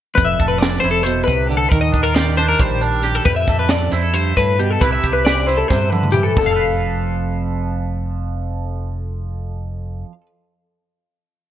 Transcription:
0.15 fingered electric bass F1, clean electric guitar F2 B4, kick, closed hi-hat
0.25 clean electric guitar E5
0.39 fingered electric bass F1, clean electric guitar A4, kick, closed hi-hat
0.48 clean electric guitar B4
0.58 clean electric guitar D5, closed hi-hat
0.62 clean electric guitar D5, snare
0.80 fingered electric bass F1, clean electric guitar C5, closed hi-hat
0.84 clean electric guitar E4
0.91 clean electric guitar A4
1.03 clean electric guitar B2 C5, closed hi-hat
1.24 fingered electric bass C2, clean electric guitar C3 B4
1.28 kick, closed hi-hat
1.47 clean electric guitar D3 G4, closed hi-hat
1.57 clean electric guitar A4
1.69 fingered electric bass D#2, clean electric guitar D#3 A#4, kick, closed hi-hat
1.81 clean electric guitar D#5
1.92 fingered electric bass D#2, clean electric guitar D4, kick, closed hi-hat
2.03 clean electric guitar F4 A#4
2.15 clean electric guitar G4 D5, snare, closed hi-hat
2.37 clean electric guitar D4 C5, closed hi-hat
2.48 clean electric guitar A#4
2.59 fingered electric bass A#1, clean electric guitar G3 C5, kick, closed hi-hat
2.81 clean electric guitar D4 A#4, closed hi-hat
3.02 clean electric guitar G4, snare, closed hi-hat
3.15 clean electric guitar A4
3.25 clean electric guitar F2 B4, fingered electric bass F2, kick, closed hi-hat
3.36 clean electric guitar E5
3.47 fingered electric bass F2, clean electric guitar A4, kick, snare, closed hi-hat
3.59 clean electric guitar B4
3.69 clean electric guitar D5, snare, closed hi-hat
3.92 fingered electric bass F2, clean electric guitar E4 C5, snare, closed hi-hat
4.03 clean electric guitar A4
4.13 clean electric guitar G2 C5, closed hi-hat
4.37 fingered electric bass G2, clean electric guitar A2 B4, kick, closed hi-hat
4.59 clean electric guitar B2 G4, closed hi-hat
4.71 clean electric guitar A4
4.81 fingered electric bass C2, clean electric guitar C3 C4 E4 G4 B4, kick, closed hi-hat
4.92 clean electric guitar E5
5.03 fingered electric bass C2, clean electric guitar G4, kick, closed hi-hat
5.13 clean electric guitar B4
5.25 clean electric guitar B4 D5, snare, closed hi-hat
5.47 clean electric guitar E4 C5, closed hi-hat
5.58 clean electric guitar A4
5.68 fingered electric bass G2, clean electric guitar C3 C5, kick, snare
5.90 clean electric guitar D3 B4, high tom
6.03 mid tom
6.12 clean electric guitar E3 G4, mid tom
6.23 clean electric guitar A4
6.36 fingered electric bass F1, clean electric guitar F2 A4, kick, floor tom
6.41 clean electric guitar F3
6.46 clean electric guitar F5
6.51 clean electric guitar A4
6.56 clean electric guitar B4

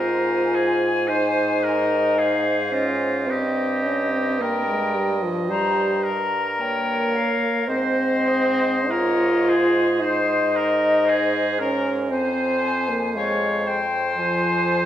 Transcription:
Already playing: bassoon G#2, french horn F4, oboe A#4, clarinet C5, flute G#5
0.55 oboe G#4
1.08 french horn D#4, oboe C5, clarinet C5
1.63 clarinet A#4, oboe A#4
2.17 oboe G#4, clarinet C5, flute F5
2.72 french horn C#4, oboe F4, flute D#5
3.26 bassoon G2, french horn C4, flute D#5
3.30 oboe G4, clarinet D#5
3.83 french horn C#4
4.12 french horn C4
4.40 french horn A#3, oboe A#4, flute G5
4.67 french horn G#3
4.95 french horn G3
5.22 french horn F3
5.49 french horn G3, oboe C5, flute A#5
6.04 oboe A#4, flute A#5
6.60 french horn A#3, clarinet C#5, flute G5
7.15 flute F5
7.68 bassoon G#2, french horn C4, clarinet C5, oboe C5, flute D#5
8.28 clarinet D#5
8.91 french horn F4, oboe A#4, flute C#5
9.49 oboe G#4, flute C5
9.99 french horn D#4, oboe C5, flute C5, clarinet D#5
10.55 oboe A#4, flute D#5
11.06 oboe G#4, clarinet C5
11.59 french horn C#4, clarinet A#4, oboe A#4
12.11 bassoon F2, french horn C4, clarinet C5, oboe C5, flute G#5
12.89 french horn A#3
13.15 french horn G#3, oboe C#5, flute F5
13.66 oboe C5, flute G5
14.17 french horn F3, clarinet C5, flute G#5

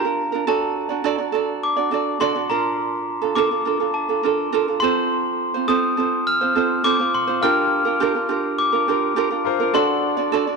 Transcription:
Already playing: glockenspiel A#5
0.05 ukulele D4 F4 A#4
0.32 ukulele D4 F4 A#4
0.47 ukulele D4 F#4 A4 D5, glockenspiel A5
0.89 ukulele D4 F#4 D5
1.04 ukulele D4 F#4 A4 D5
1.18 ukulele D4 F#4 D5
1.32 ukulele D4 F#4 A4 D5
1.63 glockenspiel D6
1.76 ukulele D4 F#4 D5
1.91 ukulele D4 F#4 A4 D5
2.20 ukulele D4 F#4 A4 D5, glockenspiel C6
2.35 ukulele D4 F#4 D5
2.50 ukulele D4 F4 A#4, glockenspiel A#5
3.22 ukulele D4 F4 A4
3.35 ukulele D4 F4 A4 A#4, glockenspiel D6
3.51 ukulele D4 F4 A4
3.65 ukulele D4 F4 A4 A#4
3.80 ukulele D4 F4 A4
3.94 glockenspiel A5
4.09 ukulele D4 F4 A4
4.23 ukulele D4 F4 A4 A#4
4.53 ukulele D4 F4 A4 A#4
4.68 ukulele D4 F4 A4
4.80 ukulele C4 F4 A4 C5, glockenspiel C6
5.54 ukulele C4 F4 C5
5.68 ukulele C4 F4 A4 C5, glockenspiel D#6
5.97 ukulele C4 F4 A4 C5
6.27 glockenspiel F6
6.41 ukulele C4 F4 C5
6.55 ukulele C4 F4 A4 C5
6.84 ukulele C4 F4 A4 C5, glockenspiel D6
6.99 ukulele C4 F4 C5
7.14 glockenspiel C6
7.27 ukulele C4 F4 C5
7.41 ukulele D4 F4 G4 A#4, grand piano F4 A#4 G5, glockenspiel F6
7.85 ukulele D4 F4 A#4
8.00 ukulele D4 F4 G4 A#4
8.15 ukulele D4 F4 A#4
8.29 ukulele D4 F4 G4 A#4
8.59 glockenspiel D6
8.72 ukulele D4 F4 A#4
8.88 ukulele D4 F4 G4 A#4
9.16 ukulele D4 F4 G4 A#4
9.31 ukulele D4 F4 A#4
9.45 grand piano F4 A#4 C5
9.60 ukulele D4 F4 A#4
9.74 ukulele D4 F#4 A4 D5, grand piano D4 A4 F#5, glockenspiel C6
10.17 ukulele D4 F#4 D5
10.32 ukulele D4 F#4 A4 D5
10.47 ukulele D4 F#4 D5

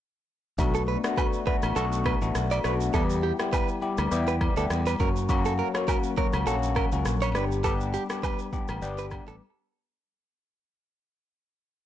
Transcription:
0.58 fingered electric bass B1, tine electric piano A3 B3 D4 F#4, kick, high agogo, shaker
0.75 clean electric guitar A4, shaker
0.88 clean electric guitar B4
1.04 tine electric piano A3 B3 D4 F#4, cross-stick, shaker
1.17 clean electric guitar B4, kick, high agogo, low woodblock, shaker
1.33 shaker
1.46 tine electric piano A3 B3 D4 F#4, clean electric guitar B4, kick
1.62 fingered electric bass A1, cross-stick, high agogo, shaker
1.76 fingered electric bass B1, tine electric piano A3 B3 D4 F#4, clean electric guitar A4, shaker
1.92 shaker
2.06 clean electric guitar B4, kick, cross-stick, high agogo
2.21 fingered electric bass A1, tine electric piano A3 B3 D4 F#4, shaker
2.35 fingered electric bass B1, cross-stick, shaker
2.51 clean electric guitar D5, high agogo, shaker
2.64 fingered electric bass B1, tine electric piano A3 B3 D4 F#4, clean electric guitar B4, cross-stick, shaker
2.81 shaker
2.94 fingered electric bass E2, tine electric piano G3 B3 E4 G4, clean electric guitar A4, kick, high agogo, shaker
3.10 shaker
3.23 clean electric guitar G4
3.39 tine electric piano G3 B3 E4 G4, cross-stick, shaker
3.53 clean electric guitar B4, kick, high agogo, low woodblock, shaker
3.68 shaker
3.82 tine electric piano G3 B3 E4 G4
3.98 fingered electric bass D2, cross-stick, high agogo, shaker
4.11 fingered electric bass E2, tine electric piano G3 B3 E4 G4, shaker
4.28 clean electric guitar B4, shaker
4.41 kick, cross-stick, high agogo
4.57 fingered electric bass D2, tine electric piano G3 B3 E4 G4, clean electric guitar A4, shaker
4.70 fingered electric bass E2, cross-stick, shaker
4.86 clean electric guitar B4, high agogo, shaker
4.99 fingered electric bass F#2, tine electric piano F#3 A#3 C#4 F#4, clean electric guitar A#4, kick, shaker
5.16 shaker
5.29 tine electric piano F#3 A#3 C#4 F#4, kick, high agogo, shaker
5.45 clean electric guitar A4, shaker
5.59 clean electric guitar A#4
5.74 tine electric piano F#3 A#3 C#4 F#4, cross-stick, shaker
5.88 clean electric guitar A#4, kick, high agogo, low woodblock, shaker
6.03 shaker
6.17 tine electric piano F#3 A#3 C#4 F#4, clean electric guitar A#4, kick
6.33 fingered electric bass C#2, cross-stick, high agogo, shaker
6.46 fingered electric bass A#1, tine electric piano F#3 A#3 C#4 F#4, clean electric guitar A4, shaker
6.63 shaker
6.76 clean electric guitar A#4, kick, cross-stick, high agogo
6.92 fingered electric bass C#2, tine electric piano F#3 A#3 C#4 F#4, shaker
7.06 fingered electric bass A#1, cross-stick, shaker
7.22 clean electric guitar C#5, high agogo, shaker
7.35 fingered electric bass G1, tine electric piano G3 B3 D4 G4, clean electric guitar B4, cross-stick, shaker
7.52 shaker
7.64 tine electric piano G3 B3 D4 G4, clean electric guitar A4, kick, high agogo, shaker
7.80 shaker
7.94 clean electric guitar G4, shaker
8.10 tine electric piano G3 B3 D4 G4, cross-stick, shaker
8.23 clean electric guitar B4, kick, high agogo, low woodblock, shaker
8.39 shaker
8.53 tine electric piano G3 B3 D4 G4, kick, shaker
8.68 fingered electric bass A1, cross-stick, high agogo, shaker
8.82 fingered electric bass G1, tine electric piano G3 B3 D4 G4, shaker
8.98 clean electric guitar B4, shaker
9.11 kick, cross-stick, high agogo, shaker
9.27 fingered electric bass A1, tine electric piano G3 B3 D4 G4, clean electric guitar A4, shaker

